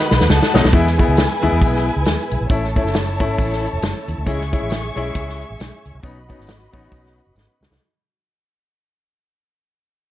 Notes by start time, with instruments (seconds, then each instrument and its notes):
Already playing: tenor saxophone D#3, tonewheel organ F#4 B4 D#5 F#5, string section B4 B5
0.11 fingered electric bass B1, snare
0.20 fingered electric bass D#2, snare
0.29 fingered electric bass C#2, string section A4 A5, snare, tambourine
0.43 snare
0.53 fingered electric bass B1, upright piano D#3 F#3 B3 D#4, snare
0.64 fingered electric bass B1, snare
0.72 fingered electric bass E2, tonewheel organ G#3 B3 E4 G#4, upright piano G#3 B3 E4, string section E4 B4 G#5, kick, crash, tambourine
0.87 snare
0.98 upright piano G#3 B3 E4, kick, closed hi-hat
1.08 fingered electric bass C#2
1.17 snare, closed hi-hat, tambourine
1.42 fingered electric bass D#2, upright piano G#3 B3 E4, closed hi-hat
1.52 fingered electric bass E2
1.61 fingered electric bass B1, kick, closed hi-hat, tambourine
1.75 snare
1.88 closed hi-hat
1.96 fingered electric bass C#2
2.05 fingered electric bass D#2, snare, closed hi-hat, tambourine
2.31 fingered electric bass B1, closed hi-hat
2.41 fingered electric bass A#1
2.50 fingered electric bass A1, upright piano A3 C#4 E4, tonewheel organ A3 C#4 A4, string section E4 C#5 A5, kick, closed hi-hat, tambourine
2.64 snare
2.76 upright piano A3 C#4 E4, kick, closed hi-hat
2.85 fingered electric bass F#1, snare
2.94 snare, closed hi-hat, tambourine
3.20 fingered electric bass G#1, upright piano A3 C#4 E4, kick, closed hi-hat
3.39 fingered electric bass A1, kick, closed hi-hat, tambourine
3.52 snare
3.65 closed hi-hat
3.73 fingered electric bass E1
3.82 fingered electric bass F#1, snare, closed hi-hat, tambourine
4.08 fingered electric bass D#2, closed hi-hat
4.18 fingered electric bass D2
4.26 fingered electric bass C#2, upright piano G#3 C#4 E4, tonewheel organ G#3 E4 G#4, string section G#4 E5 C#6, kick, closed hi-hat, tambourine
4.41 snare
4.52 upright piano G#3 C#4 E4, kick, closed hi-hat
4.62 fingered electric bass A1
4.70 snare, closed hi-hat, tambourine
4.96 fingered electric bass B1, upright piano G#3 C#4 E4, closed hi-hat
5.15 fingered electric bass C#2, kick, closed hi-hat, tambourine
5.29 snare
5.42 closed hi-hat
5.50 fingered electric bass A1
5.60 fingered electric bass B1, snare, closed hi-hat, tambourine
5.85 fingered electric bass C#2, closed hi-hat
5.95 fingered electric bass C2
6.02 fingered electric bass B1, tonewheel organ B3 C#4 D#4 F#4, upright piano B3 C#4 D#4, string section F#4 D#5 B5, kick, closed hi-hat, tambourine
6.28 upright piano B3 C#4 D#4, kick, closed hi-hat
6.39 fingered electric bass G#1, snare
6.47 snare, closed hi-hat, tambourine
6.73 fingered electric bass A1, upright piano B3 C#4 D#4, kick, closed hi-hat
6.92 fingered electric bass B1, kick, closed hi-hat, tambourine
7.06 snare
7.18 closed hi-hat
7.27 fingered electric bass F#1
7.35 fingered electric bass G#1, snare, tambourine
7.61 fingered electric bass C#2, snare
7.70 fingered electric bass C2, snare